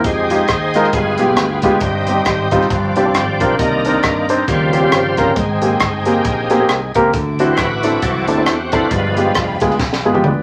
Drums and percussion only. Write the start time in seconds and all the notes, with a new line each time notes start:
0.04 kick, closed hi-hat
0.30 closed hi-hat
0.48 kick, cross-stick, closed hi-hat
0.74 cross-stick, closed hi-hat
0.84 cross-stick
0.93 kick, closed hi-hat
1.18 closed hi-hat
1.37 cross-stick, closed hi-hat
1.62 kick, closed hi-hat
1.80 kick, closed hi-hat
2.07 closed hi-hat
2.25 kick, cross-stick, closed hi-hat
2.51 kick, closed hi-hat
2.62 cross-stick
2.70 kick, closed hi-hat
2.96 closed hi-hat
3.15 cross-stick, closed hi-hat
3.40 kick, closed hi-hat
3.59 kick, closed hi-hat
3.85 closed hi-hat
4.03 kick, cross-stick, closed hi-hat
4.29 closed hi-hat
4.48 kick, closed hi-hat
4.73 closed hi-hat
4.92 cross-stick, closed hi-hat
5.17 kick, closed hi-hat
5.36 kick, closed hi-hat
5.62 closed hi-hat
5.80 kick, cross-stick, closed hi-hat
6.05 closed hi-hat
6.25 kick, closed hi-hat
6.50 closed hi-hat
6.69 cross-stick, closed hi-hat
6.95 kick, closed hi-hat
7.13 kick, closed hi-hat
7.39 closed hi-hat
7.57 kick, cross-stick, closed hi-hat
7.83 cross-stick, closed hi-hat
8.02 kick, closed hi-hat
8.28 closed hi-hat
8.46 cross-stick, closed hi-hat
8.72 kick, closed hi-hat
8.91 kick, closed hi-hat
9.17 closed hi-hat
9.35 kick, cross-stick, closed hi-hat
9.60 kick, cross-stick, closed hi-hat
9.71 cross-stick
9.79 kick, snare
9.93 snare
10.15 high tom
10.24 mid tom